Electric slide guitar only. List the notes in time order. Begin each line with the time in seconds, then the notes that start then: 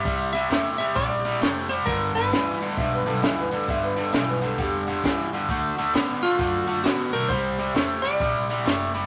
Already playing: E5
0.33 E5
0.78 E5
0.95 D5
1.52 C5
1.69 C5
1.86 A#4
2.15 B4
6.23 F4
6.84 F#4
7.13 A#4
7.29 C5
8.02 D5